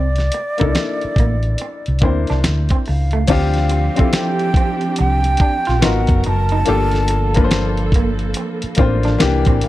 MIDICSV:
0, 0, Header, 1, 9, 480
1, 0, Start_track
1, 0, Key_signature, -1, "minor"
1, 0, Tempo, 845070
1, 1866, Time_signature, 4, 2, 24, 8
1, 5500, End_track
2, 0, Start_track
2, 0, Title_t, "Bansuri"
2, 0, Program_c, 0, 73
2, 0, Note_on_c, 0, 74, 79
2, 1393, Note_off_c, 0, 74, 0
2, 1637, Note_on_c, 0, 77, 76
2, 2357, Note_on_c, 0, 79, 104
2, 2365, Note_off_c, 0, 77, 0
2, 2832, Note_off_c, 0, 79, 0
2, 2838, Note_on_c, 0, 79, 108
2, 3324, Note_on_c, 0, 78, 101
2, 3333, Note_off_c, 0, 79, 0
2, 3555, Note_off_c, 0, 78, 0
2, 3564, Note_on_c, 0, 81, 111
2, 4493, Note_off_c, 0, 81, 0
2, 5477, Note_on_c, 0, 77, 95
2, 5500, Note_off_c, 0, 77, 0
2, 5500, End_track
3, 0, Start_track
3, 0, Title_t, "Grand piano"
3, 0, Program_c, 1, 0
3, 37, Control_c, 1, 64, 127
3, 327, Note_on_c, 1, 58, 75
3, 333, Note_on_c, 1, 62, 70
3, 342, Note_on_c, 1, 63, 60
3, 349, Note_on_c, 1, 69, 83
3, 367, Note_off_c, 1, 63, 0
3, 379, Note_on_c, 1, 64, 67
3, 1059, Note_off_c, 1, 58, 0
3, 1062, Note_off_c, 1, 62, 0
3, 1070, Note_off_c, 1, 69, 0
3, 1085, Note_off_c, 1, 64, 0
3, 1142, Note_on_c, 1, 58, 72
3, 1148, Note_on_c, 1, 62, 69
3, 1155, Note_on_c, 1, 64, 66
3, 1162, Note_on_c, 1, 72, 80
3, 1792, Note_off_c, 1, 58, 0
3, 1795, Note_off_c, 1, 62, 0
3, 1799, Note_off_c, 1, 64, 0
3, 1802, Note_off_c, 1, 72, 0
3, 1860, Note_on_c, 1, 60, 92
3, 1868, Note_on_c, 1, 62, 91
3, 1874, Control_c, 1, 64, 0
3, 1874, Note_on_c, 1, 65, 91
3, 1881, Note_on_c, 1, 67, 117
3, 1990, Control_c, 1, 64, 127
3, 2193, Note_off_c, 1, 60, 0
3, 2197, Note_off_c, 1, 62, 0
3, 2200, Note_off_c, 1, 65, 0
3, 2204, Note_off_c, 1, 67, 0
3, 2246, Note_on_c, 1, 60, 74
3, 2253, Note_on_c, 1, 64, 65
3, 2261, Note_on_c, 1, 65, 71
3, 2268, Note_on_c, 1, 69, 78
3, 3059, Note_off_c, 1, 60, 0
3, 3062, Note_off_c, 1, 64, 0
3, 3066, Note_off_c, 1, 65, 0
3, 3069, Note_off_c, 1, 69, 0
3, 3301, Note_on_c, 1, 59, 82
3, 3308, Note_on_c, 1, 63, 79
3, 3313, Control_c, 1, 64, 0
3, 3315, Note_on_c, 1, 66, 74
3, 3323, Note_on_c, 1, 70, 89
3, 3423, Control_c, 1, 64, 127
3, 3736, Note_off_c, 1, 59, 0
3, 3739, Note_off_c, 1, 63, 0
3, 3742, Note_off_c, 1, 66, 0
3, 3746, Note_off_c, 1, 70, 0
3, 3779, Note_on_c, 1, 58, 102
3, 3786, Note_on_c, 1, 62, 87
3, 3793, Note_on_c, 1, 65, 92
3, 3794, Control_c, 1, 64, 0
3, 3799, Note_on_c, 1, 69, 107
3, 3886, Control_c, 1, 64, 127
3, 4113, Note_off_c, 1, 58, 0
3, 4116, Note_off_c, 1, 62, 0
3, 4120, Note_off_c, 1, 65, 0
3, 4123, Note_off_c, 1, 69, 0
3, 4170, Note_on_c, 1, 58, 79
3, 4177, Note_on_c, 1, 62, 78
3, 4182, Note_on_c, 1, 65, 72
3, 4190, Note_on_c, 1, 71, 76
3, 4211, Note_off_c, 1, 71, 0
3, 4228, Note_on_c, 1, 72, 92
3, 4900, Note_off_c, 1, 58, 0
3, 4904, Note_off_c, 1, 62, 0
3, 4906, Note_off_c, 1, 65, 0
3, 4929, Note_off_c, 1, 72, 0
3, 4979, Note_on_c, 1, 58, 92
3, 4987, Note_on_c, 1, 62, 80
3, 4993, Note_on_c, 1, 65, 85
3, 5000, Note_on_c, 1, 72, 96
3, 5208, Note_off_c, 1, 58, 0
3, 5215, Note_off_c, 1, 62, 0
3, 5217, Note_on_c, 1, 58, 109
3, 5224, Note_on_c, 1, 62, 97
3, 5230, Note_off_c, 1, 65, 0
3, 5231, Note_on_c, 1, 52, 99
3, 5233, Note_off_c, 1, 72, 0
3, 5234, Control_c, 1, 64, 0
3, 5238, Note_on_c, 1, 67, 122
3, 5346, Control_c, 1, 64, 127
3, 5500, Note_off_c, 1, 52, 0
3, 5500, Note_off_c, 1, 58, 0
3, 5500, Note_off_c, 1, 62, 0
3, 5500, Note_off_c, 1, 67, 0
3, 5500, End_track
4, 0, Start_track
4, 0, Title_t, "Clean electric guitar"
4, 0, Program_c, 2, 27
4, 340, Note_on_c, 2, 58, 79
4, 391, Note_off_c, 2, 58, 0
4, 680, Note_on_c, 2, 58, 65
4, 762, Note_off_c, 2, 58, 0
4, 1155, Note_on_c, 2, 60, 71
4, 1238, Note_off_c, 2, 60, 0
4, 1305, Note_on_c, 2, 62, 65
4, 1356, Note_off_c, 2, 62, 0
4, 1542, Note_on_c, 2, 60, 60
4, 1593, Note_off_c, 2, 60, 0
4, 1779, Note_on_c, 2, 57, 69
4, 1831, Note_off_c, 2, 57, 0
4, 1872, Note_on_c, 2, 62, 82
4, 1956, Note_off_c, 2, 62, 0
4, 2258, Note_on_c, 2, 60, 85
4, 2310, Note_off_c, 2, 60, 0
4, 2597, Note_on_c, 2, 60, 62
4, 2680, Note_off_c, 2, 60, 0
4, 3075, Note_on_c, 2, 62, 76
4, 3158, Note_off_c, 2, 62, 0
4, 3221, Note_on_c, 2, 65, 71
4, 3272, Note_off_c, 2, 65, 0
4, 3314, Note_on_c, 2, 65, 80
4, 3397, Note_off_c, 2, 65, 0
4, 3704, Note_on_c, 2, 63, 74
4, 3755, Note_off_c, 2, 63, 0
4, 3798, Note_on_c, 2, 67, 89
4, 3880, Note_off_c, 2, 67, 0
4, 4181, Note_on_c, 2, 58, 90
4, 4233, Note_off_c, 2, 58, 0
4, 4520, Note_on_c, 2, 58, 77
4, 4602, Note_off_c, 2, 58, 0
4, 4994, Note_on_c, 2, 60, 88
4, 5077, Note_off_c, 2, 60, 0
4, 5140, Note_on_c, 2, 62, 68
4, 5192, Note_off_c, 2, 62, 0
4, 5380, Note_on_c, 2, 60, 77
4, 5432, Note_off_c, 2, 60, 0
4, 5500, End_track
5, 0, Start_track
5, 0, Title_t, "String section"
5, 0, Program_c, 3, 48
5, 1864, Note_on_c, 3, 53, 77
5, 1866, Note_on_c, 3, 67, 90
5, 1867, Note_on_c, 3, 60, 65
5, 1867, Note_on_c, 3, 62, 63
5, 3291, Note_off_c, 3, 53, 0
5, 3292, Note_off_c, 3, 60, 0
5, 3292, Note_off_c, 3, 62, 0
5, 3292, Note_off_c, 3, 67, 0
5, 3305, Note_on_c, 3, 54, 72
5, 3308, Note_on_c, 3, 70, 85
5, 3309, Note_on_c, 3, 59, 73
5, 3781, Note_off_c, 3, 54, 0
5, 3782, Note_off_c, 3, 70, 0
5, 3783, Note_off_c, 3, 59, 0
5, 3784, Note_on_c, 3, 69, 86
5, 3785, Note_on_c, 3, 53, 78
5, 3785, Note_on_c, 3, 58, 72
5, 5211, Note_off_c, 3, 53, 0
5, 5211, Note_off_c, 3, 69, 0
5, 5224, Note_on_c, 3, 50, 83
5, 5226, Note_on_c, 3, 52, 92
5, 5500, Note_off_c, 3, 50, 0
5, 5500, Note_off_c, 3, 52, 0
5, 5500, Note_off_c, 3, 58, 0
5, 5500, End_track
6, 0, Start_track
6, 0, Title_t, "Fingered electric bass"
6, 0, Program_c, 4, 33
6, 0, Note_on_c, 4, 36, 94
6, 162, Note_off_c, 4, 36, 0
6, 354, Note_on_c, 4, 36, 79
6, 425, Note_off_c, 4, 36, 0
6, 668, Note_on_c, 4, 33, 83
6, 873, Note_off_c, 4, 33, 0
6, 1068, Note_on_c, 4, 36, 75
6, 1152, Note_off_c, 4, 36, 0
6, 1152, Note_on_c, 4, 38, 84
6, 1277, Note_off_c, 4, 38, 0
6, 1309, Note_on_c, 4, 36, 68
6, 1382, Note_off_c, 4, 36, 0
6, 1402, Note_on_c, 4, 38, 76
6, 1522, Note_off_c, 4, 38, 0
6, 1641, Note_on_c, 4, 37, 68
6, 1841, Note_off_c, 4, 37, 0
6, 1871, Note_on_c, 4, 38, 105
6, 2202, Note_off_c, 4, 38, 0
6, 2842, Note_on_c, 4, 36, 90
6, 3041, Note_off_c, 4, 36, 0
6, 3231, Note_on_c, 4, 34, 90
6, 3303, Note_off_c, 4, 34, 0
6, 3321, Note_on_c, 4, 32, 89
6, 3441, Note_off_c, 4, 32, 0
6, 3463, Note_on_c, 4, 30, 85
6, 3538, Note_off_c, 4, 30, 0
6, 3562, Note_on_c, 4, 30, 91
6, 3761, Note_off_c, 4, 30, 0
6, 3796, Note_on_c, 4, 31, 114
6, 4729, Note_off_c, 4, 31, 0
6, 4993, Note_on_c, 4, 33, 92
6, 5196, Note_off_c, 4, 33, 0
6, 5238, Note_on_c, 4, 36, 86
6, 5360, Note_off_c, 4, 36, 0
6, 5384, Note_on_c, 4, 33, 86
6, 5459, Note_off_c, 4, 33, 0
6, 5500, End_track
7, 0, Start_track
7, 0, Title_t, "Muted clean electric guitar strokes"
7, 195, Note_on_c, 9, 29, 40
7, 252, Note_off_c, 9, 29, 0
7, 918, Note_on_c, 9, 29, 43
7, 975, Note_off_c, 9, 29, 0
7, 1634, Note_on_c, 9, 29, 42
7, 1691, Note_off_c, 9, 29, 0
7, 2110, Note_on_c, 9, 29, 47
7, 2167, Note_off_c, 9, 29, 0
7, 2833, Note_on_c, 9, 29, 42
7, 2890, Note_off_c, 9, 29, 0
7, 3558, Note_on_c, 9, 29, 47
7, 3615, Note_off_c, 9, 29, 0
7, 4037, Note_on_c, 9, 29, 46
7, 4094, Note_off_c, 9, 29, 0
7, 4754, Note_on_c, 9, 29, 45
7, 4811, Note_off_c, 9, 29, 0
7, 5476, Note_on_c, 9, 29, 45
7, 5500, Note_off_c, 9, 29, 0
7, 5500, End_track
8, 0, Start_track
8, 0, Title_t, "Muted fingered electric bass strokes"
8, 593, Note_on_c, 9, 29, 40
8, 650, Note_off_c, 9, 29, 0
8, 4906, Note_on_c, 9, 29, 47
8, 4963, Note_off_c, 9, 29, 0
8, 5500, End_track
9, 0, Start_track
9, 0, Title_t, "Drums"
9, 89, Note_on_c, 9, 42, 36
9, 104, Note_on_c, 9, 38, 29
9, 145, Note_off_c, 9, 42, 0
9, 161, Note_off_c, 9, 38, 0
9, 180, Note_on_c, 9, 42, 69
9, 237, Note_off_c, 9, 42, 0
9, 330, Note_on_c, 9, 42, 39
9, 347, Note_on_c, 9, 36, 70
9, 386, Note_off_c, 9, 42, 0
9, 404, Note_off_c, 9, 36, 0
9, 425, Note_on_c, 9, 42, 68
9, 428, Note_on_c, 9, 38, 99
9, 482, Note_off_c, 9, 42, 0
9, 485, Note_off_c, 9, 38, 0
9, 576, Note_on_c, 9, 42, 35
9, 633, Note_off_c, 9, 42, 0
9, 660, Note_on_c, 9, 36, 80
9, 672, Note_on_c, 9, 42, 48
9, 716, Note_off_c, 9, 36, 0
9, 729, Note_off_c, 9, 42, 0
9, 811, Note_on_c, 9, 42, 34
9, 867, Note_off_c, 9, 42, 0
9, 898, Note_on_c, 9, 42, 74
9, 955, Note_off_c, 9, 42, 0
9, 1056, Note_on_c, 9, 42, 41
9, 1113, Note_off_c, 9, 42, 0
9, 1129, Note_on_c, 9, 42, 44
9, 1146, Note_on_c, 9, 36, 78
9, 1186, Note_off_c, 9, 42, 0
9, 1203, Note_off_c, 9, 36, 0
9, 1291, Note_on_c, 9, 42, 42
9, 1308, Note_on_c, 9, 38, 30
9, 1348, Note_off_c, 9, 42, 0
9, 1364, Note_off_c, 9, 38, 0
9, 1385, Note_on_c, 9, 38, 95
9, 1387, Note_on_c, 9, 42, 82
9, 1442, Note_off_c, 9, 38, 0
9, 1444, Note_off_c, 9, 42, 0
9, 1527, Note_on_c, 9, 42, 45
9, 1536, Note_on_c, 9, 36, 87
9, 1584, Note_off_c, 9, 42, 0
9, 1593, Note_off_c, 9, 36, 0
9, 1622, Note_on_c, 9, 46, 51
9, 1679, Note_off_c, 9, 46, 0
9, 1766, Note_on_c, 9, 42, 40
9, 1822, Note_off_c, 9, 42, 0
9, 1860, Note_on_c, 9, 42, 71
9, 1864, Note_on_c, 9, 49, 80
9, 1865, Note_on_c, 9, 36, 96
9, 1917, Note_off_c, 9, 42, 0
9, 1921, Note_off_c, 9, 49, 0
9, 1922, Note_off_c, 9, 36, 0
9, 2009, Note_on_c, 9, 42, 46
9, 2024, Note_on_c, 9, 38, 32
9, 2065, Note_off_c, 9, 42, 0
9, 2081, Note_off_c, 9, 38, 0
9, 2098, Note_on_c, 9, 42, 70
9, 2155, Note_off_c, 9, 42, 0
9, 2252, Note_on_c, 9, 42, 48
9, 2267, Note_on_c, 9, 36, 79
9, 2308, Note_off_c, 9, 42, 0
9, 2324, Note_off_c, 9, 36, 0
9, 2344, Note_on_c, 9, 42, 80
9, 2347, Note_on_c, 9, 38, 114
9, 2401, Note_off_c, 9, 42, 0
9, 2404, Note_off_c, 9, 38, 0
9, 2496, Note_on_c, 9, 42, 37
9, 2553, Note_off_c, 9, 42, 0
9, 2579, Note_on_c, 9, 36, 97
9, 2591, Note_on_c, 9, 42, 46
9, 2636, Note_off_c, 9, 36, 0
9, 2648, Note_off_c, 9, 42, 0
9, 2732, Note_on_c, 9, 42, 39
9, 2788, Note_off_c, 9, 42, 0
9, 2818, Note_on_c, 9, 42, 82
9, 2875, Note_off_c, 9, 42, 0
9, 2976, Note_on_c, 9, 42, 47
9, 3033, Note_off_c, 9, 42, 0
9, 3051, Note_on_c, 9, 42, 55
9, 3067, Note_on_c, 9, 36, 87
9, 3108, Note_off_c, 9, 42, 0
9, 3124, Note_off_c, 9, 36, 0
9, 3211, Note_on_c, 9, 42, 42
9, 3228, Note_on_c, 9, 38, 31
9, 3268, Note_off_c, 9, 42, 0
9, 3285, Note_off_c, 9, 38, 0
9, 3307, Note_on_c, 9, 38, 118
9, 3309, Note_on_c, 9, 42, 92
9, 3364, Note_off_c, 9, 38, 0
9, 3366, Note_off_c, 9, 42, 0
9, 3449, Note_on_c, 9, 42, 52
9, 3457, Note_on_c, 9, 36, 101
9, 3506, Note_off_c, 9, 42, 0
9, 3514, Note_off_c, 9, 36, 0
9, 3543, Note_on_c, 9, 42, 66
9, 3600, Note_off_c, 9, 42, 0
9, 3686, Note_on_c, 9, 42, 43
9, 3743, Note_off_c, 9, 42, 0
9, 3781, Note_on_c, 9, 42, 79
9, 3837, Note_off_c, 9, 42, 0
9, 3927, Note_on_c, 9, 42, 39
9, 3943, Note_on_c, 9, 38, 32
9, 3984, Note_off_c, 9, 42, 0
9, 4000, Note_off_c, 9, 38, 0
9, 4021, Note_on_c, 9, 42, 76
9, 4078, Note_off_c, 9, 42, 0
9, 4171, Note_on_c, 9, 42, 51
9, 4187, Note_on_c, 9, 36, 76
9, 4228, Note_off_c, 9, 42, 0
9, 4244, Note_off_c, 9, 36, 0
9, 4264, Note_on_c, 9, 42, 67
9, 4268, Note_on_c, 9, 38, 115
9, 4321, Note_off_c, 9, 42, 0
9, 4324, Note_off_c, 9, 38, 0
9, 4416, Note_on_c, 9, 42, 38
9, 4473, Note_off_c, 9, 42, 0
9, 4499, Note_on_c, 9, 36, 96
9, 4512, Note_on_c, 9, 42, 52
9, 4556, Note_off_c, 9, 36, 0
9, 4568, Note_off_c, 9, 42, 0
9, 4652, Note_on_c, 9, 42, 39
9, 4708, Note_off_c, 9, 42, 0
9, 4738, Note_on_c, 9, 42, 82
9, 4795, Note_off_c, 9, 42, 0
9, 4896, Note_on_c, 9, 42, 51
9, 4953, Note_off_c, 9, 42, 0
9, 4970, Note_on_c, 9, 42, 57
9, 4986, Note_on_c, 9, 36, 95
9, 5027, Note_off_c, 9, 42, 0
9, 5043, Note_off_c, 9, 36, 0
9, 5131, Note_on_c, 9, 42, 42
9, 5148, Note_on_c, 9, 38, 35
9, 5188, Note_off_c, 9, 42, 0
9, 5205, Note_off_c, 9, 38, 0
9, 5226, Note_on_c, 9, 38, 119
9, 5228, Note_on_c, 9, 42, 88
9, 5283, Note_off_c, 9, 38, 0
9, 5285, Note_off_c, 9, 42, 0
9, 5368, Note_on_c, 9, 42, 57
9, 5376, Note_on_c, 9, 36, 102
9, 5424, Note_off_c, 9, 42, 0
9, 5433, Note_off_c, 9, 36, 0
9, 5461, Note_on_c, 9, 42, 81
9, 5500, Note_off_c, 9, 42, 0
9, 5500, End_track
0, 0, End_of_file